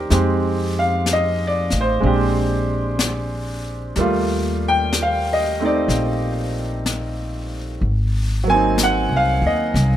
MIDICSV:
0, 0, Header, 1, 4, 480
1, 0, Start_track
1, 0, Tempo, 963082
1, 54, Time_signature, 4, 2, 24, 8
1, 4968, End_track
2, 0, Start_track
2, 0, Title_t, "Upright piano"
2, 0, Program_c, 0, 0
2, 0, Control_c, 0, 64, 127
2, 0, Note_on_c, 0, 58, 39
2, 0, Note_on_c, 0, 62, 37
2, 0, Note_on_c, 0, 67, 47
2, 0, Note_on_c, 0, 70, 52
2, 0, Note_on_c, 0, 72, 41
2, 0, Note_on_c, 0, 74, 39
2, 51, Note_off_c, 0, 67, 0
2, 51, Note_on_c, 0, 63, 42
2, 52, Note_on_c, 0, 60, 45
2, 53, Note_on_c, 0, 56, 48
2, 55, Note_off_c, 0, 58, 0
2, 58, Note_off_c, 0, 62, 0
2, 59, Note_on_c, 0, 67, 50
2, 61, Control_c, 0, 64, 0
2, 62, Note_off_c, 0, 70, 0
2, 64, Note_off_c, 0, 72, 0
2, 64, Note_off_c, 0, 74, 0
2, 154, Control_c, 0, 64, 127
2, 393, Note_on_c, 0, 77, 67
2, 538, Note_off_c, 0, 77, 0
2, 562, Note_on_c, 0, 75, 68
2, 703, Note_off_c, 0, 75, 0
2, 733, Note_on_c, 0, 74, 67
2, 869, Note_off_c, 0, 74, 0
2, 900, Note_on_c, 0, 72, 63
2, 990, Note_off_c, 0, 56, 0
2, 998, Note_on_c, 0, 56, 49
2, 1000, Note_off_c, 0, 60, 0
2, 1007, Note_on_c, 0, 60, 41
2, 1011, Note_off_c, 0, 63, 0
2, 1015, Note_off_c, 0, 67, 0
2, 1017, Note_on_c, 0, 62, 45
2, 1020, Control_c, 0, 64, 0
2, 1028, Note_on_c, 0, 67, 55
2, 1117, Control_c, 0, 64, 127
2, 1337, Note_off_c, 0, 72, 0
2, 1968, Note_off_c, 0, 56, 0
2, 1972, Note_off_c, 0, 60, 0
2, 1975, Note_on_c, 0, 55, 51
2, 1977, Note_off_c, 0, 62, 0
2, 1980, Note_on_c, 0, 57, 45
2, 1981, Control_c, 0, 64, 0
2, 1982, Note_off_c, 0, 67, 0
2, 1987, Note_on_c, 0, 58, 46
2, 1995, Note_on_c, 0, 65, 53
2, 2083, Control_c, 0, 64, 127
2, 2334, Note_on_c, 0, 79, 86
2, 2471, Note_off_c, 0, 79, 0
2, 2504, Note_on_c, 0, 77, 62
2, 2636, Note_off_c, 0, 77, 0
2, 2657, Note_on_c, 0, 75, 64
2, 2781, Note_off_c, 0, 57, 0
2, 2789, Note_on_c, 0, 57, 42
2, 2793, Note_off_c, 0, 75, 0
2, 2799, Note_on_c, 0, 60, 39
2, 2806, Note_on_c, 0, 63, 48
2, 2818, Note_on_c, 0, 74, 63
2, 3258, Note_off_c, 0, 74, 0
2, 3897, Note_off_c, 0, 55, 0
2, 3899, Note_off_c, 0, 57, 0
2, 3902, Control_c, 0, 64, 0
2, 3903, Note_off_c, 0, 58, 0
2, 3904, Note_off_c, 0, 60, 0
2, 3907, Note_off_c, 0, 65, 0
2, 3908, Note_off_c, 0, 63, 0
2, 4006, Control_c, 0, 64, 127
2, 4204, Note_on_c, 0, 54, 47
2, 4223, Note_on_c, 0, 58, 43
2, 4234, Note_on_c, 0, 80, 86
2, 4237, Note_on_c, 0, 60, 46
2, 4259, Note_on_c, 0, 63, 50
2, 4381, Note_off_c, 0, 80, 0
2, 4403, Note_on_c, 0, 78, 75
2, 4545, Note_off_c, 0, 78, 0
2, 4567, Note_on_c, 0, 77, 79
2, 4708, Note_off_c, 0, 77, 0
2, 4717, Note_on_c, 0, 75, 60
2, 4968, Note_off_c, 0, 54, 0
2, 4968, Note_off_c, 0, 58, 0
2, 4968, Note_off_c, 0, 60, 0
2, 4968, Note_off_c, 0, 63, 0
2, 4968, Note_off_c, 0, 75, 0
2, 4968, End_track
3, 0, Start_track
3, 0, Title_t, "Upright bass"
3, 0, Program_c, 1, 32
3, 55, Note_on_c, 1, 41, 69
3, 839, Note_off_c, 1, 41, 0
3, 858, Note_on_c, 1, 33, 54
3, 1001, Note_off_c, 1, 33, 0
3, 1013, Note_on_c, 1, 34, 66
3, 1955, Note_off_c, 1, 34, 0
3, 1975, Note_on_c, 1, 39, 68
3, 2917, Note_off_c, 1, 39, 0
3, 2932, Note_on_c, 1, 34, 69
3, 3874, Note_off_c, 1, 34, 0
3, 3894, Note_on_c, 1, 32, 64
3, 4516, Note_off_c, 1, 32, 0
3, 4533, Note_on_c, 1, 36, 52
3, 4683, Note_off_c, 1, 36, 0
3, 4693, Note_on_c, 1, 39, 63
3, 4844, Note_off_c, 1, 39, 0
3, 4855, Note_on_c, 1, 36, 68
3, 4968, Note_off_c, 1, 36, 0
3, 4968, End_track
4, 0, Start_track
4, 0, Title_t, "Drums"
4, 51, Note_on_c, 9, 25, 31
4, 51, Note_on_c, 9, 38, 25
4, 101, Note_off_c, 9, 38, 0
4, 528, Note_off_c, 9, 25, 0
4, 528, Note_on_c, 9, 25, 28
4, 528, Note_on_c, 9, 38, 40
4, 528, Note_on_c, 9, 44, 48
4, 578, Note_off_c, 9, 38, 0
4, 578, Note_off_c, 9, 44, 0
4, 849, Note_on_c, 9, 38, 23
4, 899, Note_off_c, 9, 38, 0
4, 1009, Note_off_c, 9, 25, 0
4, 1009, Note_on_c, 9, 25, 31
4, 1490, Note_off_c, 9, 25, 0
4, 1490, Note_on_c, 9, 25, 35
4, 1490, Note_on_c, 9, 38, 45
4, 1490, Note_on_c, 9, 44, 48
4, 1540, Note_off_c, 9, 38, 0
4, 1540, Note_off_c, 9, 44, 0
4, 1972, Note_off_c, 9, 25, 0
4, 1972, Note_on_c, 9, 25, 36
4, 1972, Note_on_c, 9, 38, 26
4, 2022, Note_off_c, 9, 38, 0
4, 2455, Note_off_c, 9, 25, 0
4, 2455, Note_on_c, 9, 25, 37
4, 2455, Note_on_c, 9, 38, 42
4, 2455, Note_on_c, 9, 44, 47
4, 2505, Note_off_c, 9, 38, 0
4, 2505, Note_off_c, 9, 44, 0
4, 2936, Note_off_c, 9, 25, 0
4, 2936, Note_on_c, 9, 25, 38
4, 2936, Note_on_c, 9, 38, 26
4, 2986, Note_off_c, 9, 38, 0
4, 3418, Note_off_c, 9, 25, 0
4, 3418, Note_on_c, 9, 25, 36
4, 3418, Note_on_c, 9, 38, 43
4, 3418, Note_on_c, 9, 44, 54
4, 3468, Note_off_c, 9, 38, 0
4, 3468, Note_off_c, 9, 44, 0
4, 3898, Note_off_c, 9, 25, 0
4, 3898, Note_on_c, 9, 25, 32
4, 4375, Note_off_c, 9, 25, 0
4, 4375, Note_on_c, 9, 25, 34
4, 4375, Note_on_c, 9, 38, 43
4, 4375, Note_on_c, 9, 44, 58
4, 4425, Note_off_c, 9, 38, 0
4, 4425, Note_off_c, 9, 44, 0
4, 4860, Note_off_c, 9, 25, 0
4, 4860, Note_on_c, 9, 25, 36
4, 4860, Note_on_c, 9, 38, 26
4, 4910, Note_off_c, 9, 38, 0
4, 4968, Note_off_c, 9, 25, 0
4, 4968, End_track
0, 0, End_of_file